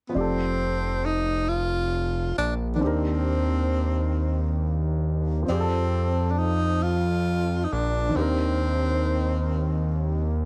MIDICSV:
0, 0, Header, 1, 4, 480
1, 0, Start_track
1, 0, Tempo, 888889
1, 78, Time_signature, 6, 3, 24, 8
1, 5644, End_track
2, 0, Start_track
2, 0, Title_t, "Grand piano"
2, 0, Program_c, 0, 0
2, 51, Note_on_c, 0, 53, 52
2, 65, Note_on_c, 0, 60, 49
2, 81, Note_on_c, 0, 74, 50
2, 97, Note_on_c, 0, 67, 53
2, 112, Note_on_c, 0, 69, 57
2, 193, Control_c, 0, 64, 127
2, 1483, Note_off_c, 0, 53, 0
2, 1488, Note_on_c, 0, 51, 54
2, 1490, Note_off_c, 0, 60, 0
2, 1498, Note_off_c, 0, 74, 0
2, 1503, Note_on_c, 0, 60, 51
2, 1506, Note_off_c, 0, 67, 0
2, 1513, Note_off_c, 0, 69, 0
2, 1518, Note_on_c, 0, 62, 55
2, 1526, Control_c, 0, 64, 0
2, 1534, Note_on_c, 0, 67, 50
2, 1550, Note_on_c, 0, 70, 63
2, 1632, Control_c, 0, 64, 127
2, 2921, Note_off_c, 0, 51, 0
2, 2929, Note_off_c, 0, 60, 0
2, 2931, Note_on_c, 0, 53, 55
2, 2937, Note_off_c, 0, 62, 0
2, 2944, Note_off_c, 0, 67, 0
2, 2946, Note_on_c, 0, 60, 53
2, 2952, Note_off_c, 0, 70, 0
2, 2961, Note_on_c, 0, 74, 47
2, 2964, Control_c, 0, 64, 0
2, 2977, Note_on_c, 0, 67, 52
2, 2992, Note_on_c, 0, 68, 54
2, 3010, Note_off_c, 0, 68, 0
2, 3027, Note_on_c, 0, 69, 69
2, 3057, Control_c, 0, 64, 127
2, 4363, Note_off_c, 0, 53, 0
2, 4370, Note_off_c, 0, 60, 0
2, 4371, Note_on_c, 0, 51, 55
2, 4378, Note_off_c, 0, 74, 0
2, 4386, Note_off_c, 0, 67, 0
2, 4387, Note_on_c, 0, 60, 46
2, 4403, Note_on_c, 0, 62, 49
2, 4405, Control_c, 0, 64, 0
2, 4411, Note_off_c, 0, 69, 0
2, 4419, Note_on_c, 0, 67, 49
2, 4434, Note_on_c, 0, 70, 60
2, 4505, Control_c, 0, 64, 127
2, 5644, Note_off_c, 0, 51, 0
2, 5644, Note_off_c, 0, 60, 0
2, 5644, Note_off_c, 0, 62, 0
2, 5644, Note_off_c, 0, 67, 0
2, 5644, Note_off_c, 0, 70, 0
2, 5644, End_track
3, 0, Start_track
3, 0, Title_t, "Tenor saxophone"
3, 0, Program_c, 1, 66
3, 47, Note_on_c, 1, 59, 47
3, 85, Note_on_c, 1, 60, 78
3, 93, Note_off_c, 1, 59, 0
3, 570, Note_on_c, 1, 63, 85
3, 578, Note_off_c, 1, 60, 0
3, 804, Note_on_c, 1, 65, 94
3, 812, Note_off_c, 1, 63, 0
3, 1281, Note_off_c, 1, 65, 0
3, 1286, Note_on_c, 1, 62, 75
3, 1372, Note_off_c, 1, 62, 0
3, 1486, Note_on_c, 1, 62, 52
3, 1523, Note_on_c, 1, 60, 81
3, 1531, Note_off_c, 1, 62, 0
3, 2720, Note_off_c, 1, 60, 0
3, 2963, Note_on_c, 1, 60, 86
3, 3407, Note_on_c, 1, 62, 55
3, 3415, Note_off_c, 1, 60, 0
3, 3446, Note_on_c, 1, 63, 85
3, 3454, Note_off_c, 1, 62, 0
3, 3687, Note_on_c, 1, 65, 96
3, 3695, Note_off_c, 1, 63, 0
3, 4128, Note_on_c, 1, 63, 60
3, 4136, Note_off_c, 1, 65, 0
3, 4170, Note_on_c, 1, 62, 87
3, 4178, Note_off_c, 1, 63, 0
3, 4408, Note_on_c, 1, 60, 80
3, 4416, Note_off_c, 1, 62, 0
3, 5603, Note_off_c, 1, 60, 0
3, 5644, End_track
4, 0, Start_track
4, 0, Title_t, "Analog synth bass"
4, 0, Program_c, 2, 38
4, 84, Note_on_c, 2, 29, 84
4, 1259, Note_off_c, 2, 29, 0
4, 1287, Note_on_c, 2, 34, 84
4, 1527, Note_on_c, 2, 39, 83
4, 1535, Note_off_c, 2, 34, 0
4, 2941, Note_off_c, 2, 39, 0
4, 2968, Note_on_c, 2, 41, 84
4, 4141, Note_off_c, 2, 41, 0
4, 4172, Note_on_c, 2, 34, 95
4, 4383, Note_off_c, 2, 34, 0
4, 4407, Note_on_c, 2, 39, 85
4, 5644, Note_off_c, 2, 39, 0
4, 5644, End_track
0, 0, End_of_file